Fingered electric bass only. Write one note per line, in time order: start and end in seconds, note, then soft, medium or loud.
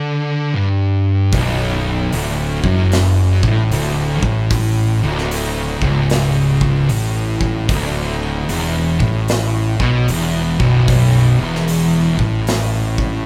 1.33 2.08 B0 loud
2.13 2.61 D1 loud
2.64 3.40 F#1 medium
3.43 3.70 A1 medium
3.71 4.19 D1 loud
4.23 4.99 A1 medium
5.03 5.78 D1 loud
5.81 6.86 C#1 medium
6.91 7.66 A1 loud
7.69 8.45 D1 medium
8.49 8.97 E1 medium
9.01 9.76 A1 medium
9.80 10.06 B1 medium
10.09 10.56 E1 loud
10.61 11.36 B0 medium
11.40 12.16 E1 medium
12.19 13.23 A1 medium